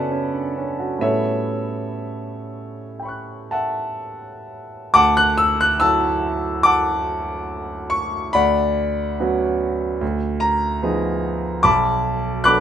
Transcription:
0.00 1.04 C#3 soft
0.00 1.00 B3 soft
0.00 0.12 C#4 soft
0.00 0.34 D4 soft
0.00 0.80 F#4 soft
0.00 0.99 A4 medium
0.00 1.05 B4 medium
0.00 0.98 D5 medium
0.00 1.01 E5 medium
0.00 0.98 F#5 medium
0.00 1.05 G#5 medium
0.00 1.02 A5 medium
0.00 1.05 B5 medium
0.12 0.47 C#4 soft
0.34 0.56 D4 soft
0.58 0.94 C#4 soft
0.80 1.01 F#4 soft
0.98 4.89 A2 soft
0.98 4.89 G3 soft
0.98 4.90 B3 soft
0.98 4.90 C#4 soft
0.98 4.91 F#4 soft
0.98 3.51 E5 medium
1.02 3.98 A4 soft
1.02 3.98 C#5 soft
3.00 4.91 G5 soft
3.00 4.92 B5 soft
3.05 4.94 C#6 soft
3.05 4.95 F#6 soft
3.51 4.91 E5 medium
3.51 4.90 F#5 medium
3.51 4.93 A5 medium
4.94 5.78 D2 medium
4.94 5.15 F#5 medium
4.94 5.15 A5 medium
4.94 5.16 D6 loud
5.17 5.38 F#6 loud
5.38 5.59 E6 medium
5.61 5.81 F#6 loud
5.80 8.31 F#3 soft
5.80 8.32 A3 soft
5.80 8.32 E4 soft
5.80 8.32 F#4 soft
5.80 6.61 A5 medium
5.80 6.65 E6 loud
6.63 7.88 F#5 medium
6.63 7.88 A5 medium
6.63 7.91 D6 loud
7.90 8.34 C#6 medium
8.33 9.17 D2 medium
8.33 9.97 D5 medium
8.33 9.97 F#5 medium
8.33 10.00 B5 medium
9.20 9.98 F#3 soft
9.20 9.98 B3 soft
9.20 9.98 C#4 soft
9.20 9.98 F#4 medium
10.01 10.79 D2 medium
10.40 11.62 A#5 medium
10.82 11.59 F3 soft
10.82 11.60 B3 soft
10.82 11.60 D#4 soft
10.82 11.60 G#4 soft
11.63 12.43 B1 medium
11.63 12.41 A5 medium
11.63 12.42 B5 medium
11.63 12.44 D6 medium
12.44 12.60 F#3 soft
12.44 12.60 B3 soft
12.44 12.60 D4 soft
12.44 12.60 A4 soft
12.44 12.60 B5 medium
12.44 12.60 D6 medium
12.44 12.60 F#6 loud

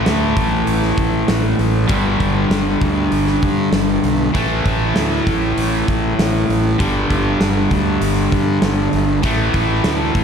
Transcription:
0.00 1.87 A2 medium
0.00 1.88 E3 medium
0.00 1.88 A3 medium
0.06 0.32 D2 medium
0.06 snare loud
0.06 open hi-hat medium
0.37 0.62 A1 medium
0.37 kick medium
0.37 open hi-hat soft
0.67 0.92 A1 medium
0.67 open hi-hat medium
0.83 snare soft
0.97 1.23 A1 medium
0.97 kick medium
0.97 open hi-hat soft
1.28 1.53 A1 medium
1.28 snare loud
1.28 open hi-hat medium
1.59 1.84 A1 medium
1.59 open hi-hat soft
1.88 2.15 G1 medium
1.88 4.32 G2 medium
1.88 4.32 D3 medium
1.88 4.33 G3 medium
1.88 kick loud
1.88 open hi-hat medium
2.20 2.46 G1 medium
2.20 kick medium
2.20 open hi-hat soft
2.50 2.75 G1 medium
2.50 snare loud
2.50 open hi-hat medium
2.81 3.07 D2 medium
2.81 kick medium
2.81 open hi-hat soft
3.11 3.37 G1 medium
3.11 open hi-hat medium
3.27 snare soft
3.42 3.68 G2 medium
3.42 kick medium
3.42 open hi-hat soft
3.72 3.98 G1 medium
3.72 snare loud
3.72 open hi-hat medium
4.04 4.29 B1 medium
4.04 open hi-hat soft
4.33 4.60 A1 medium
4.33 6.77 A2 medium
4.33 6.77 E3 medium
4.33 6.78 A3 loud
4.33 kick loud
4.33 open hi-hat medium
4.66 4.91 A1 medium
4.66 kick medium
4.66 open hi-hat soft
4.94 5.20 D2 medium
4.94 snare loud
4.94 open hi-hat medium
5.27 5.52 A1 medium
5.27 kick medium
5.27 open hi-hat soft
5.57 5.82 A1 medium
5.57 open hi-hat medium
5.88 6.13 A1 medium
5.88 kick medium
5.88 open hi-hat medium
6.19 6.44 A1 medium
6.19 snare loud
6.19 open hi-hat medium
6.49 6.74 A1 medium
6.49 open hi-hat medium
6.78 7.05 G1 medium
6.78 9.21 G2 medium
6.78 9.22 D3 medium
6.78 9.23 G3 loud
6.78 kick loud
6.78 open hi-hat medium
7.10 7.36 G1 medium
7.10 kick medium
7.10 open hi-hat soft
7.40 7.65 G1 medium
7.40 snare loud
7.40 open hi-hat medium
7.71 7.96 D2 medium
7.71 kick medium
7.71 open hi-hat soft
8.01 8.26 G1 medium
8.01 open hi-hat medium
8.32 8.57 G2 medium
8.32 kick medium
8.32 open hi-hat soft
8.62 8.87 G1 medium
8.62 snare loud
8.62 open hi-hat medium
8.93 9.18 G1 medium
8.93 open hi-hat soft
9.23 9.49 A1 medium
9.23 10.24 A2 medium
9.23 10.24 E3 medium
9.23 10.24 A3 medium
9.23 kick loud
9.23 open hi-hat medium
9.54 9.80 A1 medium
9.54 kick medium
9.54 open hi-hat soft
9.84 10.10 D2 medium
9.84 snare loud
9.84 open hi-hat medium
10.15 10.24 A1 medium
10.15 kick medium
10.15 open hi-hat soft

